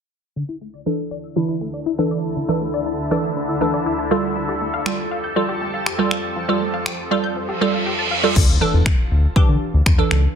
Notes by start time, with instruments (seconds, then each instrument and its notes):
0.36 ambient pad D2 D3 E4 A4, synth arpeggio sound D3
0.49 synth arpeggio sound E4
0.61 synth arpeggio sound A3
0.74 synth arpeggio sound D5
0.86 synth pluck E3 D4 A4, synth arpeggio sound E4
1.11 synth arpeggio sound D5
1.24 synth arpeggio sound E6
1.36 synth arpeggio sound D3, synth pluck E3 D4 E4
1.49 synth arpeggio sound E4
1.61 synth arpeggio sound A3
1.74 synth arpeggio sound D5
1.86 synth arpeggio sound E4
1.98 synth pluck E3 D4 A4, synth arpeggio sound A5
2.11 synth arpeggio sound D5
2.36 synth arpeggio sound D3
2.49 synth pluck E3 D4 A4, synth arpeggio sound E4
2.61 synth arpeggio sound A3
2.74 synth arpeggio sound D5
2.86 synth arpeggio sound E4
3.11 synth pluck E3 D4 A4, synth arpeggio sound D5
3.24 synth arpeggio sound E6
3.36 synth arpeggio sound D3
3.49 synth arpeggio sound E4
3.61 synth pluck E3 D4 A4, synth arpeggio sound A3
3.74 synth arpeggio sound D5
3.86 synth arpeggio sound E4
3.99 synth arpeggio sound A5
4.11 ambient pad F2 F3 G4 A4, synth pluck G3 F4 A4, synth arpeggio sound F5
4.36 synth arpeggio sound F3
4.49 synth arpeggio sound G4
4.61 synth arpeggio sound A3
4.74 synth arpeggio sound F5
4.86 synth pluck G3 F4 A4, synth arpeggio sound G4, finger snap
5.11 synth arpeggio sound F5
5.24 synth arpeggio sound G6
5.36 synth arpeggio sound F3, synth pluck G3 F4 A4
5.49 synth arpeggio sound G4
5.61 synth arpeggio sound A3
5.74 synth arpeggio sound F5
5.86 synth arpeggio sound G4, finger snap
5.99 synth pluck G3 F4 A4, synth arpeggio sound A5
6.11 ambient pad F4, synth arpeggio sound F5, finger snap
6.36 synth arpeggio sound F3
6.49 synth pluck G3 F4 A4, synth arpeggio sound G4
6.61 synth arpeggio sound A3
6.74 synth arpeggio sound F5
6.86 synth arpeggio sound G4, finger snap
7.11 synth pluck G3 F4 A4, synth arpeggio sound F5
7.24 synth arpeggio sound G6
7.36 synth arpeggio sound F3, reverse cymbal
7.49 synth arpeggio sound G4
7.61 synth pluck G3 F4 A4, synth arpeggio sound A3
7.74 synth arpeggio sound F5
7.86 synth arpeggio sound G4
7.99 synth arpeggio sound A5
8.11 synth arpeggio sound F5
8.23 synth pluck G3 F4 A4
8.36 analog synth bass D2, kick, crash, impact
8.61 synth pluck E3 D4 A4
8.74 analog synth bass E2
8.86 finger snap, kick
9.11 analog synth bass D2
9.36 analog synth bass D3, synth pluck E3 D4 G4, kick
9.49 analog synth bass D3
9.74 analog synth bass D2
9.86 analog synth bass E2, finger snap, kick
9.98 synth pluck E3 D4 A4
10.11 analog synth bass C#2, finger snap